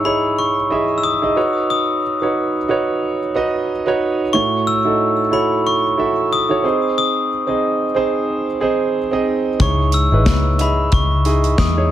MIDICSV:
0, 0, Header, 1, 5, 480
1, 0, Start_track
1, 0, Key_signature, 4, "minor"
1, 0, Tempo, 659413
1, 1233, Time_signature, 4, 2, 24, 8
1, 8672, End_track
2, 0, Start_track
2, 0, Title_t, "Glockenspiel"
2, 0, Program_c, 0, 9
2, 37, Note_on_c, 0, 83, 69
2, 258, Note_off_c, 0, 83, 0
2, 280, Note_on_c, 0, 85, 68
2, 711, Note_on_c, 0, 88, 60
2, 725, Note_off_c, 0, 85, 0
2, 753, Note_on_c, 0, 87, 78
2, 754, Note_off_c, 0, 88, 0
2, 1204, Note_off_c, 0, 87, 0
2, 1240, Note_on_c, 0, 87, 75
2, 1927, Note_off_c, 0, 87, 0
2, 3152, Note_on_c, 0, 85, 82
2, 3376, Note_off_c, 0, 85, 0
2, 3400, Note_on_c, 0, 88, 84
2, 3880, Note_on_c, 0, 83, 69
2, 3891, Note_off_c, 0, 88, 0
2, 3986, Note_off_c, 0, 83, 0
2, 4124, Note_on_c, 0, 85, 77
2, 4569, Note_off_c, 0, 85, 0
2, 4605, Note_on_c, 0, 87, 79
2, 5072, Note_off_c, 0, 87, 0
2, 5081, Note_on_c, 0, 87, 77
2, 5768, Note_off_c, 0, 87, 0
2, 6999, Note_on_c, 0, 85, 75
2, 7237, Note_on_c, 0, 88, 79
2, 7243, Note_off_c, 0, 85, 0
2, 7726, Note_on_c, 0, 83, 66
2, 7729, Note_off_c, 0, 88, 0
2, 7961, Note_on_c, 0, 85, 73
2, 7966, Note_off_c, 0, 83, 0
2, 8407, Note_off_c, 0, 85, 0
2, 8434, Note_on_c, 0, 87, 73
2, 8672, Note_off_c, 0, 87, 0
2, 8672, End_track
3, 0, Start_track
3, 0, Title_t, "Grand piano"
3, 0, Program_c, 1, 0
3, 0, Control_c, 1, 64, 127
3, 0, Note_on_c, 1, 44, 51
3, 0, Note_on_c, 1, 63, 58
3, 0, Note_on_c, 1, 64, 55
3, 0, Note_on_c, 1, 68, 54
3, 0, Note_on_c, 1, 73, 61
3, 29, Note_off_c, 1, 63, 0
3, 29, Note_on_c, 1, 63, 58
3, 33, Note_off_c, 1, 64, 0
3, 33, Note_on_c, 1, 64, 50
3, 36, Note_off_c, 1, 68, 0
3, 36, Note_on_c, 1, 68, 54
3, 44, Note_off_c, 1, 73, 0
3, 44, Note_on_c, 1, 73, 58
3, 399, Note_off_c, 1, 63, 0
3, 401, Note_off_c, 1, 64, 0
3, 403, Note_off_c, 1, 68, 0
3, 407, Note_off_c, 1, 73, 0
3, 513, Note_on_c, 1, 75, 63
3, 517, Note_on_c, 1, 64, 57
3, 521, Note_on_c, 1, 68, 58
3, 525, Note_on_c, 1, 76, 66
3, 782, Note_off_c, 1, 75, 0
3, 784, Note_off_c, 1, 64, 0
3, 786, Note_off_c, 1, 68, 0
3, 788, Note_off_c, 1, 76, 0
3, 886, Note_on_c, 1, 64, 56
3, 887, Note_on_c, 1, 63, 58
3, 890, Note_on_c, 1, 68, 52
3, 901, Note_on_c, 1, 75, 66
3, 977, Note_off_c, 1, 63, 0
3, 988, Note_on_c, 1, 63, 70
3, 991, Note_on_c, 1, 66, 60
3, 992, Note_off_c, 1, 64, 0
3, 994, Note_off_c, 1, 68, 0
3, 994, Note_on_c, 1, 71, 61
3, 998, Note_on_c, 1, 73, 72
3, 1000, Note_off_c, 1, 75, 0
3, 1003, Control_c, 1, 64, 0
3, 1007, Note_off_c, 1, 44, 0
3, 1112, Control_c, 1, 64, 127
3, 1470, Note_off_c, 1, 63, 0
3, 1472, Note_off_c, 1, 66, 0
3, 1474, Note_off_c, 1, 71, 0
3, 1475, Note_off_c, 1, 73, 0
3, 1610, Note_on_c, 1, 63, 56
3, 1615, Note_on_c, 1, 66, 52
3, 1617, Note_on_c, 1, 71, 53
3, 1624, Note_on_c, 1, 73, 64
3, 1871, Note_off_c, 1, 63, 0
3, 1874, Note_off_c, 1, 66, 0
3, 1875, Note_off_c, 1, 71, 0
3, 1878, Note_off_c, 1, 73, 0
3, 1953, Note_on_c, 1, 63, 74
3, 1958, Note_on_c, 1, 66, 62
3, 1964, Note_on_c, 1, 71, 63
3, 1971, Note_on_c, 1, 73, 75
3, 2321, Note_off_c, 1, 63, 0
3, 2324, Note_off_c, 1, 66, 0
3, 2327, Note_off_c, 1, 71, 0
3, 2330, Note_off_c, 1, 73, 0
3, 2436, Note_on_c, 1, 63, 73
3, 2441, Note_on_c, 1, 66, 65
3, 2443, Note_on_c, 1, 71, 62
3, 2449, Note_on_c, 1, 75, 84
3, 2703, Note_off_c, 1, 63, 0
3, 2706, Note_off_c, 1, 66, 0
3, 2707, Note_off_c, 1, 71, 0
3, 2710, Note_off_c, 1, 75, 0
3, 2809, Note_on_c, 1, 63, 79
3, 2815, Note_on_c, 1, 66, 66
3, 2818, Note_on_c, 1, 71, 64
3, 2825, Note_on_c, 1, 73, 81
3, 3071, Note_off_c, 1, 63, 0
3, 3074, Note_off_c, 1, 66, 0
3, 3075, Note_off_c, 1, 71, 0
3, 3079, Note_off_c, 1, 73, 0
3, 3151, Note_on_c, 1, 64, 53
3, 3159, Note_on_c, 1, 45, 52
3, 3159, Note_on_c, 1, 66, 58
3, 3161, Note_on_c, 1, 69, 51
3, 3163, Control_c, 1, 64, 0
3, 3164, Note_on_c, 1, 73, 63
3, 3305, Control_c, 1, 64, 127
3, 3421, Note_off_c, 1, 64, 0
3, 3425, Note_off_c, 1, 66, 0
3, 3426, Note_off_c, 1, 69, 0
3, 3427, Note_off_c, 1, 73, 0
3, 3528, Note_on_c, 1, 64, 60
3, 3532, Note_on_c, 1, 66, 53
3, 3539, Note_on_c, 1, 69, 55
3, 3544, Note_on_c, 1, 63, 60
3, 3790, Note_off_c, 1, 64, 0
3, 3792, Note_off_c, 1, 66, 0
3, 3796, Note_off_c, 1, 69, 0
3, 3798, Note_off_c, 1, 63, 0
3, 3846, Note_off_c, 1, 45, 0
3, 3867, Note_on_c, 1, 64, 59
3, 3876, Note_on_c, 1, 66, 54
3, 3879, Note_on_c, 1, 69, 57
3, 3883, Note_on_c, 1, 73, 59
3, 4238, Note_off_c, 1, 64, 0
3, 4243, Note_off_c, 1, 66, 0
3, 4244, Note_off_c, 1, 69, 0
3, 4246, Note_off_c, 1, 73, 0
3, 4349, Note_on_c, 1, 64, 60
3, 4356, Note_on_c, 1, 66, 56
3, 4359, Note_on_c, 1, 69, 55
3, 4364, Note_on_c, 1, 76, 68
3, 4620, Note_off_c, 1, 64, 0
3, 4623, Note_off_c, 1, 66, 0
3, 4625, Note_off_c, 1, 69, 0
3, 4627, Note_off_c, 1, 76, 0
3, 4723, Note_on_c, 1, 64, 57
3, 4727, Note_on_c, 1, 66, 58
3, 4732, Note_on_c, 1, 69, 55
3, 4738, Note_on_c, 1, 73, 65
3, 4824, Note_on_c, 1, 60, 67
3, 4831, Note_off_c, 1, 64, 0
3, 4832, Note_on_c, 1, 63, 63
3, 4833, Note_off_c, 1, 66, 0
3, 4833, Note_on_c, 1, 68, 65
3, 4835, Note_off_c, 1, 69, 0
3, 4838, Note_off_c, 1, 73, 0
3, 4840, Note_on_c, 1, 72, 69
3, 4842, Control_c, 1, 64, 0
3, 4988, Control_c, 1, 64, 127
3, 5308, Note_off_c, 1, 60, 0
3, 5312, Note_off_c, 1, 63, 0
3, 5313, Note_off_c, 1, 68, 0
3, 5316, Note_off_c, 1, 72, 0
3, 5436, Note_on_c, 1, 60, 62
3, 5441, Note_on_c, 1, 63, 52
3, 5446, Note_on_c, 1, 68, 53
3, 5451, Note_on_c, 1, 75, 63
3, 5704, Note_off_c, 1, 60, 0
3, 5707, Note_off_c, 1, 63, 0
3, 5710, Note_off_c, 1, 68, 0
3, 5712, Note_off_c, 1, 75, 0
3, 5784, Note_on_c, 1, 60, 72
3, 5790, Note_on_c, 1, 63, 63
3, 5795, Note_on_c, 1, 68, 66
3, 5798, Note_on_c, 1, 72, 79
3, 6157, Note_off_c, 1, 60, 0
3, 6160, Note_off_c, 1, 63, 0
3, 6162, Note_off_c, 1, 68, 0
3, 6163, Note_off_c, 1, 72, 0
3, 6263, Note_on_c, 1, 60, 74
3, 6266, Note_on_c, 1, 63, 72
3, 6269, Note_on_c, 1, 68, 72
3, 6277, Note_on_c, 1, 72, 78
3, 6537, Note_off_c, 1, 60, 0
3, 6538, Note_off_c, 1, 63, 0
3, 6540, Note_off_c, 1, 68, 0
3, 6544, Note_off_c, 1, 72, 0
3, 6633, Note_on_c, 1, 60, 72
3, 6639, Note_on_c, 1, 63, 67
3, 6645, Note_on_c, 1, 68, 59
3, 6647, Note_on_c, 1, 75, 83
3, 6903, Note_off_c, 1, 60, 0
3, 6906, Note_off_c, 1, 63, 0
3, 6909, Note_off_c, 1, 68, 0
3, 6910, Note_off_c, 1, 75, 0
3, 6987, Note_on_c, 1, 63, 56
3, 6990, Note_on_c, 1, 64, 55
3, 6992, Note_on_c, 1, 44, 46
3, 6994, Note_on_c, 1, 68, 53
3, 7000, Note_on_c, 1, 73, 63
3, 7002, Control_c, 1, 64, 0
3, 7122, Control_c, 1, 64, 127
3, 7259, Note_off_c, 1, 63, 0
3, 7260, Note_off_c, 1, 64, 0
3, 7262, Note_off_c, 1, 68, 0
3, 7265, Note_off_c, 1, 73, 0
3, 7364, Note_on_c, 1, 63, 57
3, 7368, Note_on_c, 1, 64, 56
3, 7375, Note_on_c, 1, 68, 51
3, 7380, Note_on_c, 1, 71, 64
3, 7628, Note_off_c, 1, 63, 0
3, 7630, Note_off_c, 1, 64, 0
3, 7634, Note_off_c, 1, 68, 0
3, 7636, Note_off_c, 1, 71, 0
3, 7683, Note_off_c, 1, 44, 0
3, 7708, Note_on_c, 1, 75, 59
3, 7714, Note_on_c, 1, 64, 48
3, 7719, Note_on_c, 1, 68, 52
3, 7722, Note_on_c, 1, 76, 67
3, 8079, Note_off_c, 1, 75, 0
3, 8082, Note_off_c, 1, 64, 0
3, 8084, Note_off_c, 1, 68, 0
3, 8086, Note_off_c, 1, 76, 0
3, 8188, Note_on_c, 1, 63, 59
3, 8193, Note_on_c, 1, 64, 58
3, 8196, Note_on_c, 1, 68, 61
3, 8200, Note_on_c, 1, 75, 74
3, 8459, Note_off_c, 1, 63, 0
3, 8462, Note_off_c, 1, 64, 0
3, 8463, Note_off_c, 1, 68, 0
3, 8465, Note_off_c, 1, 75, 0
3, 8560, Note_on_c, 1, 63, 61
3, 8566, Note_on_c, 1, 64, 55
3, 8571, Note_on_c, 1, 68, 57
3, 8574, Note_on_c, 1, 73, 65
3, 8653, Note_off_c, 1, 63, 0
3, 8669, Note_off_c, 1, 73, 0
3, 8672, Note_off_c, 1, 64, 0
3, 8672, Note_off_c, 1, 68, 0
3, 8672, End_track
4, 0, Start_track
4, 0, Title_t, "Picked electric bass"
4, 0, Program_c, 2, 34
4, 6987, Note_on_c, 2, 37, 99
4, 7338, Note_off_c, 2, 37, 0
4, 7365, Note_on_c, 2, 32, 67
4, 7469, Note_off_c, 2, 32, 0
4, 7469, Note_on_c, 2, 37, 74
4, 7922, Note_off_c, 2, 37, 0
4, 7953, Note_on_c, 2, 37, 94
4, 8404, Note_off_c, 2, 37, 0
4, 8431, Note_on_c, 2, 40, 67
4, 8672, Note_off_c, 2, 40, 0
4, 8672, End_track
5, 0, Start_track
5, 0, Title_t, "Drums"
5, 6987, Note_on_c, 9, 36, 99
5, 6987, Note_on_c, 9, 42, 85
5, 7059, Note_off_c, 9, 42, 0
5, 7060, Note_off_c, 9, 36, 0
5, 7222, Note_on_c, 9, 42, 59
5, 7295, Note_off_c, 9, 42, 0
5, 7468, Note_on_c, 9, 38, 100
5, 7469, Note_on_c, 9, 42, 83
5, 7470, Note_on_c, 9, 36, 91
5, 7541, Note_off_c, 9, 38, 0
5, 7542, Note_off_c, 9, 36, 0
5, 7542, Note_off_c, 9, 42, 0
5, 7710, Note_on_c, 9, 42, 62
5, 7783, Note_off_c, 9, 42, 0
5, 7948, Note_on_c, 9, 42, 64
5, 7952, Note_on_c, 9, 36, 93
5, 8021, Note_off_c, 9, 42, 0
5, 8025, Note_off_c, 9, 36, 0
5, 8190, Note_on_c, 9, 42, 61
5, 8263, Note_off_c, 9, 42, 0
5, 8327, Note_on_c, 9, 42, 39
5, 8400, Note_off_c, 9, 42, 0
5, 8430, Note_on_c, 9, 38, 91
5, 8430, Note_on_c, 9, 42, 59
5, 8431, Note_on_c, 9, 36, 84
5, 8503, Note_off_c, 9, 38, 0
5, 8503, Note_off_c, 9, 42, 0
5, 8504, Note_off_c, 9, 36, 0
5, 8672, End_track
0, 0, End_of_file